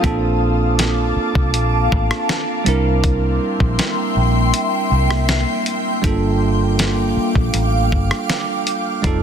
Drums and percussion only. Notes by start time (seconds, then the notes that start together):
0.04 kick, closed hi-hat
0.79 snare, closed hi-hat
1.35 kick
1.54 closed hi-hat
1.92 kick
2.11 cross-stick
2.29 snare, closed hi-hat
2.66 closed hi-hat
3.04 kick, closed hi-hat
3.60 kick
3.79 snare, closed hi-hat
4.54 closed hi-hat
5.11 cross-stick
5.29 snare, closed hi-hat
5.66 closed hi-hat
6.04 kick, closed hi-hat
6.79 snare, closed hi-hat
7.35 kick
7.54 closed hi-hat
7.92 kick
8.11 cross-stick
8.30 snare, closed hi-hat
8.67 closed hi-hat
9.04 kick, closed hi-hat